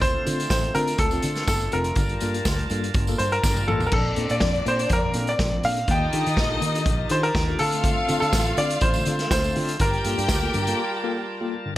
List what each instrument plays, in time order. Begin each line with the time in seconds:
Already playing: fingered electric bass D2, tonewheel organ D3 A3 C4 F4
0.01 tine electric piano D3 A3, grand piano C5, kick, closed hi-hat, tambourine
0.15 tine electric piano F4 A4
0.25 fingered electric bass D3, tine electric piano C4 F4 A4, closed hi-hat, tambourine
0.40 closed hi-hat, tambourine
0.50 fingered electric bass A1, tine electric piano D3 A3, grand piano C5, kick, snare, tambourine
0.64 closed hi-hat
0.75 fingered electric bass D3, tine electric piano C4 F4 A4, grand piano A#4, closed hi-hat, tambourine
0.87 tine electric piano F4 A4, closed hi-hat, tambourine
0.98 fingered electric bass D2, tine electric piano D3 A3, grand piano A4, kick, closed hi-hat
1.11 tine electric piano C4 F4 A4, closed hi-hat, tambourine
1.22 fingered electric bass D3, tine electric piano F4 A4, closed hi-hat, tambourine
1.35 snare, closed hi-hat, tambourine
1.48 fingered electric bass G1, grand piano A4, kick, snare, tambourine
1.60 closed hi-hat, tambourine
1.72 fingered electric bass F1, tine electric piano C4 F4 A4, grand piano A#4, closed hi-hat
1.84 closed hi-hat
1.95 fingered electric bass G1, tine electric piano G2 D3, tonewheel organ G3 A#4 A5, kick, closed hi-hat, tambourine
2.09 tine electric piano F4 A4, closed hi-hat
2.20 fingered electric bass G2, tine electric piano A#3 F4 A4, closed hi-hat, tambourine
2.34 closed hi-hat
2.45 fingered electric bass D2, tine electric piano G2 D3, kick, snare, tambourine
2.59 closed hi-hat
2.70 fingered electric bass G2, tine electric piano A#3 F4 A4, closed hi-hat, tambourine
2.84 tine electric piano F4 A4, closed hi-hat
2.94 fingered electric bass G1, tine electric piano G2 D3, kick, closed hi-hat
3.07 tine electric piano A#3 F4 A4, closed hi-hat, tambourine
3.18 fingered electric bass G2, tine electric piano F4 A4, grand piano C5, closed hi-hat, tambourine
3.32 grand piano A#4, closed hi-hat
3.44 fingered electric bass G1, tine electric piano F4 A4, kick, snare, tambourine
3.56 tine electric piano G2 D3, high tom, tambourine
3.67 fingered electric bass A1, tine electric piano A#3 F4 A4, grand piano A4, mid tom
3.80 floor tom, tambourine
3.87 grand piano A#4
3.92 fingered electric bass A#1, tine electric piano A#2 F3, tonewheel organ A#3 C4, string section D4 D5, grand piano A4, kick, crash
4.16 fingered electric bass A#2, tine electric piano C4 D4 A4, closed hi-hat
4.29 fingered electric bass A#2, tine electric piano D4 A4, grand piano D5, closed hi-hat
4.40 fingered electric bass F2, tine electric piano A#2 F3, kick, snare
4.54 closed hi-hat
4.66 fingered electric bass A#2, tine electric piano C4 D4 A4, grand piano C5, closed hi-hat
4.79 tine electric piano D4 A4, closed hi-hat
4.89 fingered electric bass F2, tine electric piano D4 A4, grand piano A#4, kick, closed hi-hat
5.04 tine electric piano A#2 F3
5.14 fingered electric bass A#2, tine electric piano C4 D4 A4, closed hi-hat
5.27 grand piano D5, closed hi-hat
5.39 fingered electric bass A#1, tine electric piano D4 A4, kick, snare
5.53 tine electric piano A#2 F3
5.63 fingered electric bass A#2, tine electric piano C4 D4 A4, grand piano F5, open hi-hat
5.76 closed hi-hat
5.88 fingered electric bass D#2, tine electric piano D#3 A#3, tonewheel organ D#3 F4 G4 A5, string section D#4 D#5, grand piano G5, kick, closed hi-hat
6.02 tine electric piano G4 A4
6.13 fingered electric bass D#3, tine electric piano D4 F4 G4 A4, closed hi-hat
6.26 fingered electric bass D#3, closed hi-hat
6.37 fingered electric bass A#1, kick, snare
6.50 tine electric piano D4 F4 G4 A4
6.60 tine electric piano D#3 A#3, fingered electric bass D#3, closed hi-hat
6.74 tine electric piano D4 F4 G4 A4, closed hi-hat
6.86 fingered electric bass A#1, kick, closed hi-hat
7.09 fingered electric bass D#3, tine electric piano D4 F4 G4 A4, grand piano C5, closed hi-hat
7.23 grand piano A#4, closed hi-hat
7.35 fingered electric bass D#2, kick, snare
7.48 tine electric piano D4 F4 G4 A4
7.59 tonewheel organ D3 A3 C4 F4, fingered electric bass D3, string section F4 F5, grand piano A4, open hi-hat
7.72 tine electric piano D3 A3, closed hi-hat
7.84 tine electric piano D3 A3, kick, closed hi-hat, tambourine
8.08 fingered electric bass D3, tine electric piano C4 F4 A4, closed hi-hat, tambourine
8.20 fingered electric bass D3, tine electric piano F4 A4, grand piano A4, closed hi-hat
8.32 fingered electric bass A1, tine electric piano D3 A3, kick, snare, tambourine
8.46 closed hi-hat
8.57 fingered electric bass D3, tine electric piano C4 F4 A4, grand piano D5, closed hi-hat, tambourine
8.69 tine electric piano F4 A4, closed hi-hat, tambourine
8.81 fingered electric bass A1, tine electric piano F4 A4, grand piano C5, kick, closed hi-hat
8.94 tine electric piano D3 A3, closed hi-hat, tambourine
9.05 fingered electric bass D3, tine electric piano C4 F4 A4, closed hi-hat, tambourine
9.19 snare, closed hi-hat
9.31 fingered electric bass D2, tine electric piano F4 A4, grand piano C5, kick, snare, tambourine
9.44 tine electric piano D3 A3, tambourine
9.56 fingered electric bass D3, tine electric piano C4 F4 A4, open hi-hat
9.69 closed hi-hat
9.79 fingered electric bass G1, tine electric piano G2 D3, tonewheel organ G3 A#4 A5, string section G4 G5, grand piano A#4, kick, closed hi-hat, tambourine
9.93 tine electric piano F4 A4, closed hi-hat
10.04 fingered electric bass G2, tine electric piano A#3 F4 A4, closed hi-hat, tambourine
10.18 fingered electric bass G2, closed hi-hat
10.28 fingered electric bass D2, kick, snare, tambourine
10.43 tine electric piano A#3 F4 A4
10.54 fingered electric bass G2, tine electric piano G2 D3, closed hi-hat, tambourine
10.67 tine electric piano A#3 F4 A4, closed hi-hat, tambourine
11.04 tine electric piano A#3 F4 A4
11.41 tine electric piano A#3 F4 A4
11.65 tine electric piano G2 D3